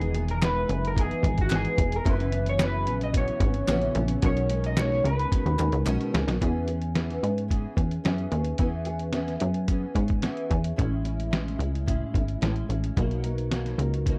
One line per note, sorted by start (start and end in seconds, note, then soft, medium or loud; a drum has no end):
0.00 0.65 E1 loud
0.00 2.01 D#3 medium
0.00 0.14 E3 medium
0.00 4.18 E3 medium
0.00 2.02 G#3 medium
0.00 0.15 B3 medium
0.00 2.02 B3 medium
0.00 0.14 D#4 medium
0.00 0.13 G#4 medium
0.00 0.31 G#4 loud
0.00 closed hi-hat soft
0.14 0.41 B3 soft
0.14 0.42 D#4 medium
0.14 0.42 G#4 medium
0.14 closed hi-hat medium
0.28 0.36 A#4 medium
0.28 closed hi-hat medium
0.41 0.69 E3 medium
0.41 0.69 B3 medium
0.41 0.68 D#4 medium
0.41 0.66 G#4 medium
0.41 0.85 B4 loud
0.41 snare loud
0.41 clap medium
0.41 closed hi-hat medium
0.67 1.13 F#1 medium
0.67 0.96 B3 soft
0.67 0.96 D#4 medium
0.67 0.95 G#4 medium
0.67 closed hi-hat medium
0.85 0.99 A#4 medium
0.85 closed hi-hat soft
0.95 1.23 E3 medium
0.95 1.24 B3 medium
0.95 1.23 D#4 medium
0.95 1.21 G#4 medium
0.95 kick loud
0.95 closed hi-hat loud
1.01 1.37 G#4 loud
1.11 closed hi-hat soft
1.22 1.67 G#1 loud
1.22 1.49 B3 soft
1.22 1.49 D#4 medium
1.22 1.50 G#4 medium
1.22 kick loud
1.22 closed hi-hat medium
1.38 1.53 F#4 loud
1.38 kick medium
1.38 closed hi-hat soft
1.49 1.77 E3 medium
1.49 1.77 B3 medium
1.49 1.77 D#4 loud
1.49 1.75 G#4 loud
1.49 snare loud
1.49 clap medium
1.49 closed hi-hat medium
1.55 1.95 G#4 medium
1.65 closed hi-hat soft
1.76 2.00 E1 medium
1.76 2.04 B3 soft
1.76 2.05 D#4 medium
1.76 2.04 G#4 medium
1.76 kick medium
1.76 closed hi-hat medium
1.92 2.09 A#4 loud
1.92 closed hi-hat medium
2.04 2.88 F#1 loud
2.04 2.32 F#2 medium
2.04 6.38 C#3 medium
2.04 2.32 E3 loud
2.04 4.21 F#3 medium
2.04 2.32 B3 medium
2.04 6.38 B3 medium
2.04 2.31 C#4 medium
2.04 kick loud
2.04 closed hi-hat medium
2.09 2.48 B4 loud
2.20 closed hi-hat soft
2.32 2.58 E3 soft
2.32 2.59 B3 medium
2.32 2.59 C#4 medium
2.32 closed hi-hat medium
2.46 2.62 C#5 loud
2.46 closed hi-hat medium
2.58 2.86 F#2 medium
2.58 2.87 E3 medium
2.58 2.87 B3 medium
2.58 2.84 C#4 medium
2.58 snare loud
2.58 clap medium
2.58 closed hi-hat medium
2.64 3.03 B4 medium
2.85 3.30 A#1 medium
2.85 3.13 E3 medium
2.85 3.15 B3 soft
2.85 3.13 C#4 medium
2.85 closed hi-hat medium
3.01 3.09 D#5 loud
3.01 closed hi-hat medium
3.13 3.41 F#2 medium
3.13 3.42 E3 medium
3.13 3.42 B3 medium
3.13 3.40 C#4 medium
3.13 kick loud
3.13 closed hi-hat loud
3.17 4.25 C#5 loud
3.28 closed hi-hat soft
3.40 3.62 G#1 loud
3.40 3.69 B3 medium
3.40 3.68 C#4 medium
3.40 kick loud
3.40 closed hi-hat medium
3.44 3.68 E3 soft
3.54 closed hi-hat soft
3.68 3.90 A#1 medium
3.68 3.96 F#2 medium
3.68 3.96 E3 medium
3.68 3.96 B3 loud
3.68 3.95 C#4 medium
3.68 snare loud
3.68 clap medium
3.68 closed hi-hat loud
3.82 closed hi-hat soft
3.95 4.17 A#1 loud
3.95 4.22 E3 medium
3.95 4.23 B3 medium
3.95 4.23 C#4 medium
3.95 closed hi-hat medium
4.08 closed hi-hat medium
4.22 5.01 B1 loud
4.22 4.50 B2 medium
4.22 4.50 D#3 medium
4.22 4.49 G#3 medium
4.22 6.39 G#3 medium
4.22 4.48 C#4 medium
4.22 6.39 D#4 medium
4.22 kick loud
4.22 closed hi-hat medium
4.26 4.66 C#5 loud
4.37 closed hi-hat soft
4.49 4.77 D#3 medium
4.49 4.77 G#3 medium
4.49 4.77 C#4 medium
4.49 closed hi-hat medium
4.64 4.78 D#5 loud
4.64 closed hi-hat medium
4.77 5.04 B2 medium
4.77 5.05 D#3 medium
4.77 5.04 G#3 medium
4.77 5.03 C#4 medium
4.77 5.06 C#5 loud
4.77 snare loud
4.77 clap medium
4.77 closed hi-hat medium
4.92 snare soft
5.04 5.26 C#2 medium
5.04 5.31 D#3 soft
5.04 5.32 G#3 medium
5.04 5.32 C#4 medium
5.04 5.83 B4 loud
5.04 closed hi-hat medium
5.19 closed hi-hat soft
5.31 5.59 B2 medium
5.31 5.59 D#3 medium
5.31 5.59 G#3 medium
5.31 5.57 C#4 medium
5.31 kick loud
5.31 closed hi-hat loud
5.46 5.57 D#2 medium
5.46 closed hi-hat soft
5.58 5.70 D#2 medium
5.58 5.84 D#3 soft
5.58 5.85 G#3 soft
5.58 5.86 C#4 medium
5.58 clap medium
5.58 closed hi-hat medium
5.72 5.84 C#2 medium
5.72 closed hi-hat soft
5.85 5.97 B1 medium
5.85 6.13 B2 medium
5.85 6.13 D#3 loud
5.85 6.13 G#3 loud
5.85 6.12 C#4 loud
5.85 clap medium
5.85 closed hi-hat medium
6.01 closed hi-hat soft
6.13 6.25 C#2 medium
6.13 6.40 D#3 medium
6.13 6.41 G#3 medium
6.13 6.41 C#4 medium
6.13 snare loud
6.13 closed hi-hat medium
6.28 6.38 B1 loud
6.28 snare loud
6.28 closed hi-hat medium
6.40 7.19 E2 loud
6.40 6.68 E3 medium
6.40 6.68 B3 medium
6.40 6.68 C#4 medium
6.40 6.66 G#4 medium
6.40 kick loud
6.40 closed hi-hat medium
6.67 6.94 B3 soft
6.67 6.95 C#4 soft
6.67 6.95 G#4 medium
6.67 closed hi-hat medium
6.82 closed hi-hat soft
6.94 7.22 E3 medium
6.94 7.23 B3 medium
6.94 7.23 C#4 medium
6.94 7.21 G#4 medium
6.94 snare medium
6.94 closed hi-hat medium
7.10 snare soft
7.10 closed hi-hat soft
7.22 7.67 G#2 medium
7.22 7.48 B3 soft
7.22 7.49 C#4 soft
7.22 7.50 G#4 medium
7.22 closed hi-hat medium
7.38 closed hi-hat soft
7.48 7.77 E3 medium
7.48 7.77 B3 medium
7.48 7.77 C#4 medium
7.48 7.75 G#4 medium
7.48 kick medium
7.48 closed hi-hat medium
7.76 7.99 E2 medium
7.76 8.03 B3 soft
7.76 8.04 C#4 soft
7.76 8.04 G#4 soft
7.76 kick medium
7.76 closed hi-hat medium
7.91 closed hi-hat soft
8.04 8.27 F#2 medium
8.04 8.32 E3 medium
8.04 8.32 B3 medium
8.04 8.32 C#4 medium
8.04 8.30 G#4 medium
8.04 snare loud
8.04 closed hi-hat medium
8.18 closed hi-hat soft
8.31 8.54 D#2 medium
8.31 8.58 B3 soft
8.31 8.59 C#4 soft
8.31 8.59 G#4 medium
8.31 closed hi-hat medium
8.45 closed hi-hat medium
8.58 9.37 E2 medium
8.58 8.87 E3 medium
8.58 8.87 B3 medium
8.58 8.86 C#4 medium
8.58 8.84 G#4 medium
8.58 kick loud
8.58 closed hi-hat medium
8.85 9.12 B3 soft
8.85 9.13 C#4 soft
8.85 9.14 G#4 medium
8.85 closed hi-hat medium
8.99 closed hi-hat soft
9.13 9.41 E3 medium
9.13 9.41 B3 medium
9.13 9.42 C#4 medium
9.13 9.39 G#4 medium
9.13 snare medium
9.13 closed hi-hat medium
9.28 snare soft
9.28 closed hi-hat soft
9.40 9.85 F#2 medium
9.40 9.67 B3 soft
9.40 9.68 C#4 medium
9.40 9.68 G#4 medium
9.40 closed hi-hat medium
9.54 closed hi-hat soft
9.68 9.96 E3 medium
9.68 9.96 B3 medium
9.68 9.94 C#4 medium
9.68 9.93 G#4 medium
9.68 kick medium
9.68 closed hi-hat loud
9.94 10.28 G#2 medium
9.94 10.22 B3 soft
9.94 10.23 C#4 soft
9.94 10.23 G#4 medium
9.94 kick medium
9.94 closed hi-hat medium
10.08 kick medium
10.08 closed hi-hat soft
10.22 10.50 E3 medium
10.22 10.51 B3 medium
10.22 10.50 C#4 medium
10.22 10.48 G#4 medium
10.22 snare loud
10.22 closed hi-hat medium
10.37 closed hi-hat soft
10.49 10.73 E2 medium
10.49 10.77 B3 soft
10.49 10.77 C#4 soft
10.49 10.77 G#4 medium
10.49 kick medium
10.49 closed hi-hat medium
10.64 closed hi-hat medium
10.76 11.56 A1 loud
10.76 11.05 A2 medium
10.76 11.05 G#3 medium
10.76 11.04 C#4 medium
10.76 11.03 E4 medium
10.76 kick loud
10.76 closed hi-hat medium
11.04 11.31 G#3 soft
11.04 11.32 C#4 medium
11.04 11.32 E4 medium
11.04 closed hi-hat medium
11.20 closed hi-hat soft
11.31 11.59 A2 medium
11.31 11.60 G#3 medium
11.31 11.59 C#4 medium
11.31 11.57 E4 medium
11.31 snare loud
11.31 closed hi-hat medium
11.48 snare soft
11.48 closed hi-hat soft
11.58 12.03 C#2 medium
11.58 11.86 G#3 soft
11.58 11.87 C#4 soft
11.58 11.87 E4 medium
11.58 closed hi-hat medium
11.75 closed hi-hat soft
11.86 12.14 A2 medium
11.86 12.15 G#3 medium
11.86 12.14 C#4 medium
11.86 12.12 E4 medium
11.86 kick medium
11.86 closed hi-hat medium
12.13 12.37 G#1 medium
12.13 12.41 G#3 soft
12.13 12.42 C#4 soft
12.13 12.41 E4 medium
12.13 kick medium
12.13 closed hi-hat medium
12.28 closed hi-hat soft
12.41 12.64 A1 medium
12.41 12.69 A2 medium
12.41 12.69 G#3 medium
12.41 12.69 C#4 medium
12.41 12.67 E4 medium
12.41 snare medium
12.41 closed hi-hat medium
12.56 closed hi-hat soft
12.69 12.91 A1 medium
12.69 12.97 G#3 soft
12.69 12.97 C#4 soft
12.69 12.96 E4 medium
12.69 closed hi-hat medium
12.84 closed hi-hat medium
12.96 13.75 B1 loud
12.96 13.24 B2 medium
12.96 13.24 F#3 medium
12.96 13.23 A#3 medium
12.96 13.21 D#4 medium
12.96 kick loud
12.96 closed hi-hat medium
13.11 closed hi-hat soft
13.23 13.51 F#3 soft
13.23 13.52 A#3 soft
13.23 13.51 D#4 medium
13.23 closed hi-hat medium
13.38 closed hi-hat soft
13.51 13.79 B2 medium
13.51 13.79 F#3 medium
13.51 13.79 A#3 medium
13.51 13.77 D#4 medium
13.51 snare loud
13.51 closed hi-hat medium
13.66 snare soft
13.66 closed hi-hat soft
13.78 14.19 C#2 medium
13.78 14.06 F#3 soft
13.78 14.07 A#3 soft
13.78 14.06 D#4 medium
13.78 closed hi-hat medium
13.94 closed hi-hat soft
14.06 14.19 B2 medium
14.06 14.19 F#3 medium
14.06 14.19 A#3 medium
14.06 14.19 D#4 medium
14.06 kick medium
14.06 closed hi-hat medium